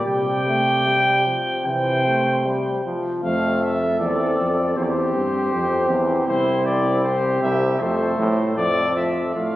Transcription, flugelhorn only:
0.06 G4
1.65 C5
3.24 A4
4.77 G4
6.28 E4
7.04 G4
7.81 A4
8.58 A4
9.36 F4

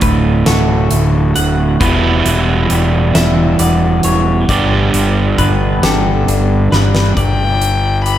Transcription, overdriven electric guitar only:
Already playing: D2 A2 D3 A3 F#4
1.80 E2 B2 E3 G3 B3 E4
4.49 G2 D3 G3 B3 D4 G4

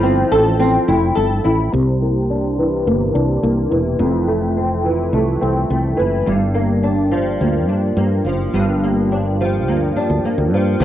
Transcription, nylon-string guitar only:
Already playing: F3 E4 A4
0.03 C4
0.31 A4
0.59 C4
0.88 E4
1.15 A4
1.44 E4
1.73 C3
2.02 A#3
2.30 D4
2.58 E3
2.86 A#3
3.14 D4
3.42 A#3
3.71 E3
3.99 F2
4.27 A3
4.57 C4
4.85 E3
5.14 A3
5.41 C4
5.70 A3
5.97 E3
6.26 G2
6.54 A#3
6.83 D4
7.12 F3
7.41 A#3
7.69 D4
7.98 A#3
8.26 F3
8.54 G2
8.84 A#3
9.12 D4
9.41 F3
9.68 A#3
9.96 D4
10.25 A#3
10.54 F3

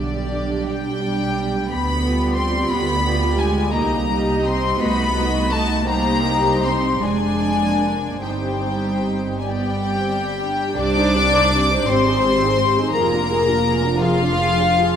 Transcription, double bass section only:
Already playing: B1
0.64 B1
1.70 D2
2.71 D2
3.74 C2
4.78 C2
5.86 C2
7.01 F1
8.21 G1
10.75 C2
11.87 G#1
12.92 F1

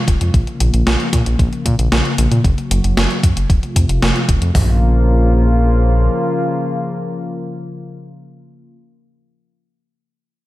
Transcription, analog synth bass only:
0.08 F1
0.21 F2
0.34 A#1
0.61 A#1
0.74 A#1
0.87 A#1
1.13 A#2
1.26 A#1
1.39 A#1
1.66 A#2
1.79 A#1
1.92 A#1
2.18 A#1
2.31 A#2
2.44 F#1
2.71 F#1
2.84 F#1
2.97 F#1
3.23 F#2
3.37 F#1
3.50 F1
3.76 F2
3.89 F1
4.02 F1
4.29 F1
4.42 F2
4.55 A#1

